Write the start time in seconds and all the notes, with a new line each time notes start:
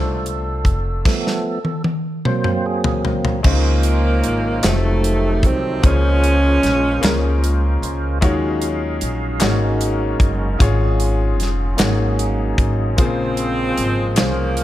Already playing: C2 D3 A3 D4 F4 A4 C5
0.26 closed hi-hat
0.65 F1, kick, closed hi-hat
1.05 F3 A3 B3, kick, snare, crash
1.27 snare
1.65 high tom
1.84 high tom
2.25 F#3 A#3 C4 C5, mid tom
2.44 mid tom
2.66 G#4
2.84 floor tom
3.05 floor tom
3.25 floor tom
3.43 C#2 C#3 D#3 F3 G#3 A#3 C#4 D#4 F4 C5, kick, crash
3.83 closed hi-hat
4.24 G#1, closed hi-hat
4.62 F1 C3 D#3 F3 F#3 G#3 A3 C4 D#4 F4 F#4 C5, snare, clap, closed hi-hat
4.69 A3 A4
5.04 closed hi-hat
5.43 C2 C4, kick, closed hi-hat
5.82 C#2 C#3 F3 G#3 A#3 C#4 F4 G#4 A#4 C5, kick, closed hi-hat
6.24 closed hi-hat
6.63 A#1, snare, closed hi-hat
7.01 C#2 A#3 C#4 F4 G#4 A#4, snare, clap, closed hi-hat
7.44 closed hi-hat
7.82 C#2, closed hi-hat
8.21 D#2 D#3 F3 G#3 C#4 D#4 F4 F#4 G#4 C#5 F5, kick, closed hi-hat
8.31 F#3
8.62 closed hi-hat
9.01 A#1, closed hi-hat
9.40 G#1 G#2 G#3 A#3 C#4 D#4 F#4 G#4 A#4 C#5, snare, clap, closed hi-hat
9.81 closed hi-hat
10.20 F#1, kick, closed hi-hat
10.58 G#1 G#2 C#4 F4 G#4 C#5, kick, closed hi-hat
11.00 closed hi-hat
11.39 F1, snare, closed hi-hat
11.76 G#2 F#3 A#3 C#4 D#4 F#4 G#4, snare, clap, closed hi-hat
11.80 G#1 C#5
12.19 closed hi-hat
12.58 G#1, kick, closed hi-hat
12.96 A#1 A#2 F3 A#3 C4 F4 G#4 C5, kick, closed hi-hat
13.01 C#3 F3 G#3
13.37 closed hi-hat
13.77 G#1, closed hi-hat
14.16 C2 F3 A#3 C#4 F4 G#4 C5, snare, clap, closed hi-hat
14.57 closed hi-hat